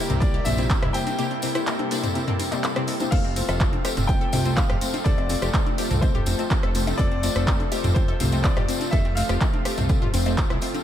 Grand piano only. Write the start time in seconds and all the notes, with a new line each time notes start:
Already playing: A#4
0.20 D5
0.45 E5
0.93 G5
3.11 F5
4.07 G5
4.56 F5
5.04 D5
6.01 C5
6.98 D5
7.94 C5
8.43 D5
8.91 E5
9.15 F5